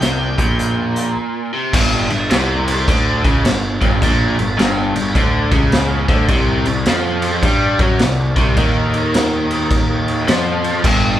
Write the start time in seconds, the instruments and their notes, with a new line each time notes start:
Already playing: lead electric guitar G5
0.01 picked electric bass C2, overdriven electric guitar C3, snare, closed hi-hat
0.38 picked electric bass A#1, overdriven electric guitar A#2, kick, closed hi-hat
0.59 closed hi-hat
0.96 closed hi-hat
1.53 overdriven electric guitar C3
1.73 picked electric bass G1, overdriven electric guitar G2, kick, crash
2.10 picked electric bass G1, overdriven electric guitar G2, crash
2.30 picked electric bass C2, overdriven electric guitar C3, snare, crash
2.68 crash
2.88 picked electric bass D2, overdriven electric guitar D3, kick, crash
3.24 picked electric bass C#2, overdriven electric guitar C#3, kick, crash
3.45 picked electric bass G1, overdriven electric guitar G2, snare, crash
3.82 picked electric bass G1, overdriven electric guitar G2, kick, crash
4.02 picked electric bass A#1, overdriven electric guitar A#2, kick, crash
4.39 picked electric bass G1, overdriven electric guitar G2, crash
4.58 picked electric bass G1, overdriven electric guitar G2, snare, crash
4.96 picked electric bass G1, overdriven electric guitar G2, crash
5.15 picked electric bass D2, overdriven electric guitar D3, kick, crash
5.52 picked electric bass C#2, overdriven electric guitar C#3, kick, crash
5.72 snare, crash
6.08 picked electric bass D2, overdriven electric guitar D3, kick, crash
6.29 picked electric bass C2, overdriven electric guitar C3, kick, crash
6.65 picked electric bass C2, overdriven electric guitar C3, crash
6.86 picked electric bass F2, overdriven electric guitar F3, snare, crash
7.22 crash
7.43 picked electric bass G2, overdriven electric guitar G3, kick, crash
7.79 picked electric bass F#2, overdriven electric guitar F#3, kick, crash
7.99 picked electric bass C2, overdriven electric guitar C3, snare, crash
8.36 picked electric bass C2, overdriven electric guitar C3, kick, crash
8.57 picked electric bass D#2, overdriven electric guitar D#3, kick, crash
8.94 crash
9.14 snare, crash
9.51 crash
9.71 kick, crash
10.08 crash
10.28 picked electric bass F2, overdriven electric guitar F3, snare, crash
10.64 crash
10.84 picked electric bass G1, overdriven electric guitar G2, kick, crash